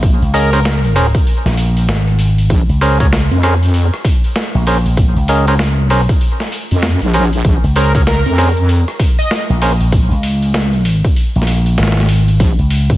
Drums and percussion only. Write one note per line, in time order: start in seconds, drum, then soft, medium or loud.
0.03 kick loud
0.03 open hi-hat soft
0.22 open hi-hat soft
0.34 open hi-hat medium
0.53 open hi-hat soft
0.65 snare loud
0.65 open hi-hat soft
0.84 open hi-hat soft
0.96 open hi-hat medium
1.15 kick loud
1.15 open hi-hat soft
1.27 open hi-hat soft
1.46 snare soft
1.46 open hi-hat soft
1.57 open hi-hat medium
1.77 open hi-hat soft
1.89 snare loud
1.89 open hi-hat soft
2.07 open hi-hat soft
2.19 open hi-hat medium
2.38 open hi-hat soft
2.50 kick loud
2.50 open hi-hat soft
2.69 open hi-hat soft
2.81 open hi-hat medium
3.00 kick loud
3.00 open hi-hat soft
3.13 snare loud
3.13 open hi-hat soft
3.31 open hi-hat soft
3.43 cross-stick medium
3.43 open hi-hat medium
3.63 open hi-hat soft
3.65 open hi-hat soft
3.68 open hi-hat soft
3.71 open hi-hat soft
3.74 open hi-hat soft
3.94 cross-stick soft
3.94 open hi-hat soft
4.05 kick loud
4.05 open hi-hat medium
4.24 open hi-hat soft
4.36 snare loud
4.36 open hi-hat soft
4.55 open hi-hat soft
4.67 open hi-hat medium
4.86 open hi-hat soft
4.97 kick loud
4.97 open hi-hat soft
5.16 open hi-hat soft
5.28 open hi-hat medium
5.47 open hi-hat soft
5.59 snare loud
5.59 open hi-hat soft
5.90 open hi-hat medium
6.09 kick loud
6.09 open hi-hat soft
6.21 open hi-hat soft
6.40 snare soft
6.40 open hi-hat soft
6.52 open hi-hat medium
6.71 open hi-hat soft
6.83 snare loud
6.83 open hi-hat soft
7.02 open hi-hat soft
7.14 open hi-hat medium
7.33 open hi-hat soft
7.45 kick loud
7.45 open hi-hat soft
7.64 open hi-hat soft
7.76 open hi-hat medium
7.95 kick loud
7.95 open hi-hat soft
8.07 snare loud
8.07 open hi-hat soft
8.26 open hi-hat soft
8.38 cross-stick medium
8.38 open hi-hat medium
8.57 open hi-hat soft
8.69 open hi-hat soft
8.88 cross-stick soft
8.88 open hi-hat soft
9.00 kick loud
9.00 open hi-hat medium
9.19 open hi-hat soft
9.31 snare loud
9.31 open hi-hat soft
9.50 open hi-hat soft
9.62 open hi-hat medium
9.81 open hi-hat soft
9.92 kick loud
9.92 open hi-hat soft
10.12 open hi-hat soft
10.23 open hi-hat medium
10.42 open hi-hat soft
10.54 snare loud
10.54 open hi-hat soft
10.73 open hi-hat soft
10.85 open hi-hat medium
11.05 kick loud
11.05 open hi-hat soft
11.16 open hi-hat soft
11.36 open hi-hat soft
11.42 snare soft
11.47 open hi-hat medium
11.66 open hi-hat soft
11.78 snare loud
11.78 open hi-hat soft
11.83 snare medium
11.88 snare medium
11.92 snare medium
11.97 snare soft
11.97 open hi-hat soft
12.00 snare soft
12.03 snare soft
12.06 snare soft
12.06 open hi-hat medium
12.28 open hi-hat soft
12.40 kick loud
12.40 open hi-hat soft
12.59 open hi-hat soft
12.70 open hi-hat medium
12.90 kick loud
12.90 open hi-hat soft